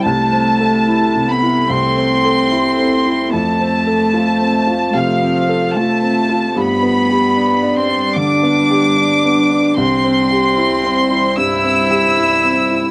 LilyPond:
<<
  \new Staff \with { instrumentName = "Violin section" } { \time 4/4 \key c \major \tempo 4 = 74 a''4. b''8 c'''2 | a''2 f''4 a''4 | b''4. c'''8 d'''2 | c'''2 e'''2 | }
  \new Staff \with { instrumentName = "Ambient pad" } { \time 4/4 \key c \major <a e' a'>1 | <a f' c''>1 | <g d' d''>1 | <g e' c''>1 | }
  \new Staff \with { instrumentName = "Grand piano" } { \time 4/4 \key c \major \tuplet 3/2 { c,8 c'8 a'8 e'8 c8 e'8 c,8 c'8 a'8 e'8 c'8 e'8 } | \tuplet 3/2 { f,8 c'8 a'8 f'8 c'8 f'8 c8 c'8 a'8 f'8 c'8 f'8 } | \tuplet 3/2 { g,8 b8 g'8 d'8 d'8 d'8 d8 b8 g'8 d'8 b8 d'8 } | \tuplet 3/2 { c,8 c'8 g'8 e'8 c'8 e'8 g,8 c'8 g'8 e'8 c'8 e'8 } | }
  \new Staff \with { instrumentName = "Cello" } { \time 4/4 \key c \major a4. b8 c'2 | a2 f4 a4 | b4. c'8 d'2 | c'2 e'2 | }
>>